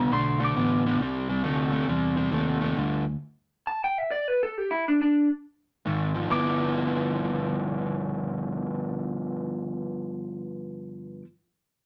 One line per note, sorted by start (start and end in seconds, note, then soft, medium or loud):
0.00 0.11 C2 medium
0.00 0.10 D3 medium
0.00 0.11 B3 medium
0.00 0.12 A#5 loud
0.11 0.55 B1 medium
0.11 0.38 D3 medium
0.11 0.39 A3 medium
0.11 0.41 C6 medium
0.40 0.54 D3 medium
0.40 0.55 A3 medium
0.44 1.72 D6 medium
0.56 0.99 A1 medium
0.56 0.83 D3 medium
0.56 0.83 B3 medium
0.86 1.00 D3 medium
0.86 1.00 B3 medium
1.01 1.43 C2 medium
1.01 1.27 C3 medium
1.01 1.27 G3 medium
1.29 1.43 C3 medium
1.29 1.43 G3 medium
1.44 1.87 D2 medium
1.44 1.70 C3 medium
1.44 1.70 A3 loud
1.72 1.87 C3 medium
1.72 1.87 A3 medium
1.88 2.31 E2 medium
1.88 2.15 C3 medium
1.88 2.15 G3 medium
2.17 2.30 C3 medium
2.17 2.32 G3 medium
2.31 2.75 D#2 medium
2.31 2.58 C3 medium
2.31 2.59 A3 medium
2.61 2.75 C3 medium
2.61 2.75 A3 medium
2.77 3.14 D2 medium
2.77 3.03 G2 medium
2.77 3.03 D3 medium
3.67 3.81 A5 medium
3.84 3.98 G5 medium
3.98 4.11 E5 medium
4.11 4.28 D5 medium
4.28 4.41 B4 medium
4.43 4.58 A4 medium
4.58 4.70 G4 medium
4.71 4.84 E4 medium
4.88 5.00 D4 medium
5.02 5.28 D4 loud
5.86 6.29 G#1 medium
5.86 6.12 G#2 medium
5.86 6.12 D#3 medium
6.14 6.28 G#2 medium
6.14 6.29 F3 medium
6.28 11.21 G1 medium
6.28 11.22 G2 loud
6.28 11.24 F3 medium
6.28 11.25 B3 loud
6.28 11.26 E4 loud
6.28 11.22 D6 loud